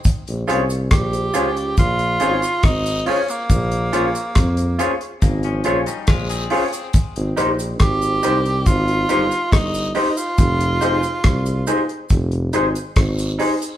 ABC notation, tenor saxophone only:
X:1
M:4/4
L:1/16
Q:1/4=70
K:Bbdor
V:1 name="Tenor saxophone"
z4 G4 F4 E2 D B,- | B,6- B, z8 z | z4 G4 F4 E2 E F- | F6- F z8 z |]